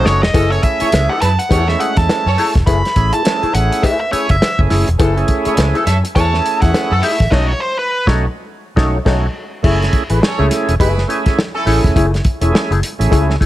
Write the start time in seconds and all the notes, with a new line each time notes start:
Already playing: A3 C#4 D#4 F#4
0.04 F#1 D#4 A4 C#5, snare
0.22 E1 D#5, muted hollow-body jazz guitar stroke, snare
0.34 F#1 A3 C#4 E4 G#4 A4, kick, closed hi-hat, cowbell
0.51 A3 C#4 E4 G#4 C#5, muted hollow-body jazz guitar stroke, closed hi-hat
0.63 E5, muted hollow-body jazz guitar stroke, kick, closed hi-hat
0.80 A3 C#4 E4 G#4 A4 C#5, muted fingered electric bass stroke, closed hi-hat
0.92 C#2, snare, closed hi-hat, cowbell
1.09 A3 C#4 E4 G#4 A4 F#5
1.21 F#2 E4 G#4 B4 A5, snare, closed hi-hat
1.38 F#5, muted hollow-body jazz guitar stroke, closed hi-hat
1.49 E2 A3 C#4 E4 G#4 A4 C#5, kick, closed hi-hat, cowbell
1.68 G#3 A3 C#4 E4 E5, muted hollow-body jazz guitar stroke, snare
1.79 A3 E4 G#4 F#5, closed hi-hat
1.97 E2 A5, kick, snare, closed hi-hat
2.09 muted hollow-body jazz guitar stroke, snare, closed hi-hat, cowbell
2.26 F#2 C#4 A4 C#5, muted hollow-body jazz guitar stroke
2.38 A3 E4 G#4, open hi-hat
2.55 E1, muted hollow-body jazz guitar stroke, kick, snare, closed hi-hat
2.66 F#1 A3 E4 G#4 B5, kick, closed hi-hat, cowbell
2.85 muted hollow-body jazz guitar stroke, snare, closed hi-hat
2.96 A1 A3 C#4 E4 G#4, muted hollow-body jazz guitar stroke, kick, closed hi-hat
3.13 A3 E4 G#4 A5, closed hi-hat
3.24 A3 C#4 E4 G#4, snare, closed hi-hat, cowbell
3.42 A3 E4 G#4, muted fingered electric bass stroke, closed hi-hat
3.53 A1 A3 C#4 E4 G#4 F#5, closed hi-hat
3.72 muted hollow-body jazz guitar stroke, closed hi-hat
3.82 A3 E4 G#4 E5, kick, closed hi-hat, cowbell
4.00 E5, muted hollow-body jazz guitar stroke
4.11 A3 C#4 E4 G#4 C#5, muted fingered electric bass stroke, closed hi-hat
4.29 F#1 E5, kick, closed hi-hat
4.41 muted hollow-body jazz guitar stroke, snare, closed hi-hat, cowbell
4.58 F#1 A3 C#4 E4 G#4, muted hollow-body jazz guitar stroke, kick
4.70 F#1 A3 E4 G#4, snare, open hi-hat
4.88 E1, muted hollow-body jazz guitar stroke, closed hi-hat
4.99 F#1 A3 C#4 E4 G#4 A4, kick, closed hi-hat, cowbell
5.16 A3 C#4 E4 G#4, closed hi-hat
5.27 muted hollow-body jazz guitar stroke, kick, closed hi-hat
5.45 A3 C#4 E4 G#4 A4 C#5, muted fingered electric bass stroke, closed hi-hat
5.57 C#2, muted hollow-body jazz guitar stroke, snare, closed hi-hat, cowbell
5.74 A3 C#4 E4 G#4 A4, closed hi-hat
5.86 F#2 A4 C#5 E5, muted hollow-body jazz guitar stroke, snare, closed hi-hat
6.04 muted hollow-body jazz guitar stroke, closed hi-hat
6.15 E2 A3 C#4 E4 G#4 A4 C#5 A5, kick, closed hi-hat, cowbell
6.32 A3 C#4 E4 G#4, snare
6.44 muted hollow-body jazz guitar stroke, closed hi-hat
6.61 E2 A3 E4 G#4 F#5, kick, snare, closed hi-hat
6.74 snare, closed hi-hat, cowbell
6.91 F#2 C#4 E4 A4, muted hollow-body jazz guitar stroke
7.02 A3 E4 G#4 E5, open hi-hat
7.20 A1, muted hollow-body jazz guitar stroke, kick, snare, closed hi-hat
7.31 B1 A3 C#4 D#4 F#4 A4 C#5 D#5, kick, snare, crash
7.48 C#5
7.60 C5
7.79 B4
8.06 B1 A3 C#4 D#4 F#4 A4 C#5, kick, snare
8.76 B1 A3 C#4 D#4 F#4 A4 C#5, kick, snare
9.05 B1 A3 C#4 D#4 F#4 A4 C#5, kick, snare, crash
9.63 F#1 A3 C#4 E4 G#4, kick, crash
9.81 muted hollow-body jazz guitar stroke, snare, closed hi-hat
9.93 muted hollow-body jazz guitar stroke, kick, closed hi-hat
10.10 A1 A3 E4 G#4 B4, closed hi-hat
10.22 C#4 A4 C#5, muted hollow-body jazz guitar stroke, snare
10.38 C#2 A3 C#4 E4 G#4
10.51 snare, closed hi-hat
10.68 E1, muted hollow-body jazz guitar stroke, closed hi-hat
10.80 F#1 A3 E4 G#4 B4, kick, closed hi-hat
10.97 muted hollow-body jazz guitar stroke, snare
11.07 A3 C#4 E4 G#4, closed hi-hat
11.26 muted hollow-body jazz guitar stroke, kick, snare, closed hi-hat
11.38 muted hollow-body jazz guitar stroke, snare
11.54 C#4 E4 A4, muted hollow-body jazz guitar stroke
11.66 A1 A3 C#4 E4 G#4, open hi-hat
11.84 E1, muted hollow-body jazz guitar stroke, kick, snare, closed hi-hat
11.96 F#1 A3 E4 G#4, kick, closed hi-hat
12.13 muted hollow-body jazz guitar stroke, snare, closed hi-hat
12.24 muted hollow-body jazz guitar stroke, kick, closed hi-hat
12.41 E1 A3 C#4 E4 G#4, closed hi-hat
12.53 muted hollow-body jazz guitar stroke, snare
12.71 F#1 A3 E4 G#4, closed hi-hat
12.83 closed hi-hat
12.99 A1 A3 C#4 E4 G#4, muted hollow-body jazz guitar stroke, closed hi-hat
13.11 C#2 A3 E4 G#4, kick, closed hi-hat
13.29 muted hollow-body jazz guitar stroke, snare
13.40 A3 E4 G#4, kick, closed hi-hat